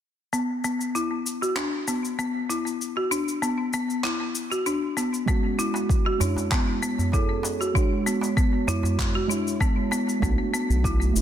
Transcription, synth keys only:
5.26 6.16 G#3 medium
5.26 6.17 C#4 medium
5.26 6.18 F#4 medium
6.18 7.09 G#3 medium
6.18 7.10 C#5 medium
6.23 7.11 E4 medium
7.13 7.71 G#4 medium
7.13 7.73 A4 medium
7.13 7.72 C#5 medium
7.74 8.64 G#3 medium
7.74 8.65 C#5 medium
7.78 8.66 F#4 medium
8.67 9.26 G#3 medium
8.67 9.27 E4 medium
8.67 9.27 C#5 medium
9.28 10.18 G#3 medium
9.28 10.19 C#5 medium
9.32 10.20 E4 loud
10.20 11.11 A3 medium
10.20 11.11 D4 medium
10.24 11.13 F#4 medium
11.13 11.22 A3 medium
11.13 11.22 D4 medium
11.17 11.22 E4 medium

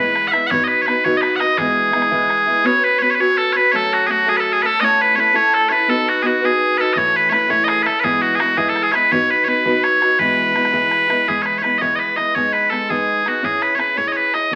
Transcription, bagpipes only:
0.00 0.28 B4 medium
0.28 0.32 F#5 loud
0.32 0.47 E5 loud
0.47 0.64 C#5 loud
0.47 0.51 F#5 loud
0.64 0.82 B4 medium
0.64 0.68 D#5 medium
0.82 0.86 C#5 medium
0.86 1.05 B4 medium
1.05 1.17 C#5 loud
1.17 1.21 D#5 medium
1.21 1.36 B4 medium
1.36 1.58 D#5 medium
1.36 1.40 F#5 medium
1.58 2.66 G#4 medium
2.66 2.84 C#5 loud
2.84 2.99 B4 loud
2.99 3.11 B4 loud
2.99 3.02 C#5 loud
3.11 3.15 C#5 medium
3.15 3.21 B4 medium
3.21 3.38 C#5 loud
3.38 3.53 A4 loud
3.53 3.72 B4 loud
3.53 3.57 C#5 loud
3.72 3.93 A4 loud
3.72 3.76 C#5 loud
3.93 4.06 F#4 medium
4.06 4.11 G#4 medium
4.11 4.29 F#4 medium
4.29 4.37 G#4 loud
4.37 4.52 A4 medium
4.37 4.40 B4 medium
4.52 4.62 G#4 loud
4.62 4.66 B4 loud
4.66 4.81 A4 loud
4.80 4.85 D#5 loud
4.85 5.02 C#5 loud
5.02 5.16 B4 medium
5.16 5.20 C#5 loud
5.20 5.36 B4 loud
5.36 5.54 C#5 loud
5.54 5.69 A4 medium
5.69 5.90 B4 loud
5.69 5.72 C#5 loud
5.90 6.09 A4 loud
6.09 6.22 F#4 medium
6.22 6.45 F#4 medium
6.22 6.26 G#4 medium
6.45 6.78 G#4 medium
6.78 6.94 A4 medium
6.78 6.81 B4 medium
6.94 6.98 D#5 medium
6.98 7.16 C#5 loud
7.16 7.30 B4 medium
7.30 7.50 B4 medium
7.30 7.33 C#5 medium
7.50 7.64 C#5 loud
7.64 7.69 D#5 loud
7.69 7.82 G#4 loud
7.82 8.00 A4 medium
7.82 7.86 B4 medium
8.00 8.04 B4 loud
8.04 8.21 G#4 loud
8.21 8.35 F#4 medium
8.35 8.39 G#4 medium
8.39 8.57 F#4 medium
8.57 8.69 G#4 medium
8.69 8.83 A4 medium
8.83 8.92 G#4 loud
8.92 9.12 B4 medium
8.92 8.95 C#5 medium
9.12 9.31 C#5 loud
9.31 9.45 B4 medium
9.45 9.49 C#5 medium
9.49 9.84 B4 medium
9.84 10.19 C#5 loud
10.19 11.28 B4 loud
11.28 11.42 G#4 medium
11.42 11.58 B4 medium
11.42 11.46 C#5 medium
11.58 11.63 C#5 medium
11.63 11.78 B4 medium
11.78 11.96 C#5 medium
11.78 11.82 D#5 medium
11.96 12.16 B4 medium
11.96 11.99 D#5 medium
12.16 12.35 D#5 medium
12.35 12.53 C#5 medium
12.53 12.70 B4 medium
12.70 12.90 A4 medium
12.90 13.28 G#4 medium
13.28 13.45 F#4 medium
13.45 13.62 G#4 loud
13.62 13.75 B4 medium
13.75 13.79 C#5 medium
13.79 13.98 B4 medium
13.98 14.08 C#5 medium
14.08 14.12 D#5 medium
14.12 14.17 C#5 medium
14.17 14.34 B4 medium
14.34 14.53 D#5 medium

